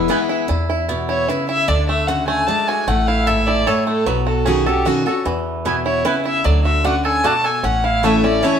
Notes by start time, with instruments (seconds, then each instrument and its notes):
Already playing: five-string banjo E3 E4
0.08 steel-string acoustic guitar E3 G#3 B3 E4, mandolin B3 E4 B4 G#5, five-string banjo B3
0.29 five-string banjo E4
0.48 steel-string acoustic guitar E2, upright bass E2, five-string banjo E4
0.69 five-string banjo E4
0.89 steel-string acoustic guitar B2, five-string banjo B3
1.09 five-string banjo E4, fiddle C#5
1.28 steel-string acoustic guitar C#3, five-string banjo E4, fiddle B4
1.49 five-string banjo E4, fiddle E5
1.68 upright bass D2, steel-string acoustic guitar D3, five-string banjo D4, fiddle D5
1.89 five-string banjo A3, fiddle E5
2.08 steel-string acoustic guitar C#3, five-string banjo F#4, fiddle F#5
2.27 five-string banjo A3, fiddle G#5
2.47 steel-string acoustic guitar G#3, five-string banjo D4, fiddle A5
2.68 five-string banjo F#4, fiddle G#5
2.87 upright bass A1, steel-string acoustic guitar A2, five-string banjo A3, fiddle F#5
3.07 five-string banjo E4, fiddle F5
3.27 steel-string acoustic guitar G#2, five-string banjo A4, fiddle E5
3.47 five-string banjo E4, fiddle D5
3.67 steel-string acoustic guitar A2, five-string banjo A4, fiddle C#5
3.87 five-string banjo A3, fiddle A4
4.06 upright bass B1, steel-string acoustic guitar B2, five-string banjo F#3, fiddle B4
4.27 five-string banjo F#4, fiddle A4
4.45 steel-string acoustic guitar B2 D#3 C#4 F#4, five-string banjo C#4, fiddle G#4
4.66 steel-string acoustic guitar C#4 F#4, fiddle G4, five-string banjo A4
4.85 steel-string acoustic guitar B2 D#3 C#4 F#4, five-string banjo F#4, fiddle F#4
5.06 steel-string acoustic guitar C#4 F#4, fiddle F#4, five-string banjo A4
5.25 steel-string acoustic guitar E2, upright bass E2, five-string banjo E3
5.65 steel-string acoustic guitar B2, mandolin B3 E4 B4 G#5, five-string banjo E4
5.85 five-string banjo E4, fiddle C#5
6.05 steel-string acoustic guitar C#3, mandolin B3 E4 B4 G#5, five-string banjo E4, fiddle B4
6.25 five-string banjo E4, fiddle E5
6.44 upright bass D2, steel-string acoustic guitar D3, five-string banjo F#3, fiddle D5
6.64 five-string banjo F#4, fiddle E5
6.84 mandolin A3 F#4 D5 F#5, steel-string acoustic guitar C#4, five-string banjo D4, fiddle F#5
7.05 five-string banjo A4, fiddle G#5
7.24 steel-string acoustic guitar B2, mandolin A3 F#4 D5 F#5, five-string banjo F#4, fiddle A5
7.44 five-string banjo A4, fiddle G#5
7.63 upright bass A1, steel-string acoustic guitar A2, five-string banjo C#4, fiddle F#5
7.84 five-string banjo E4, fiddle F5
8.03 steel-string acoustic guitar E3 A3 C#4 E4, mandolin A3 E4 C#5 A5, five-string banjo A3, fiddle E5
8.24 five-string banjo C#4, steel-string acoustic guitar C#4 E4, fiddle D5
8.42 steel-string acoustic guitar E3 A3 C#4 E4, mandolin A3 E4 C#5 A5, five-string banjo E4, fiddle C#5